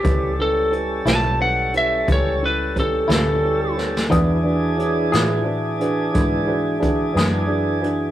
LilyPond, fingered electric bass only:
\new Staff \with { instrumentName = "Fingered electric bass" } { \clef bass \time 12/8 \key e \dorian \tempo 4. = 59 cis,4. b,,4. cis,4. d,4. | e,4. a,4. gis,4. fis,4. | }